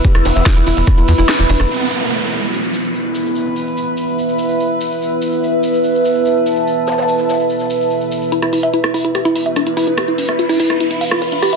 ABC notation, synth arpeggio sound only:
X:1
M:4/4
L:1/16
Q:1/4=145
K:C
V:1 name="Synth arpeggio sound"
G E D e F E E e E E F E E E D E | z16 | z16 | z16 |
z16 | E E E e E E E E G E E e D E E E | G E D e F E E e E E f F B D G e |]